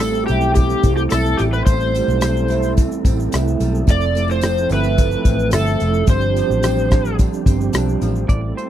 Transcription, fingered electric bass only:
Already playing: A1
0.30 B1
0.83 C2
1.12 B1
1.40 A1
1.67 A1
2.08 B1
3.05 A1
3.34 C2
3.60 B1
3.88 F1
4.71 G1
5.26 A1
5.53 G1
5.82 F1
6.07 G1
6.50 A1
7.46 G1
7.74 B1
8.01 A1
8.29 A1

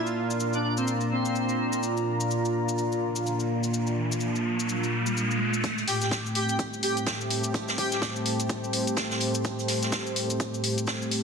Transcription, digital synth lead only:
0.54 D4
0.64 D4
0.78 C4
1.11 C4
5.88 G4
6.02 G4
6.35 G4
6.49 G4
6.83 G4
7.78 G4
7.92 G4

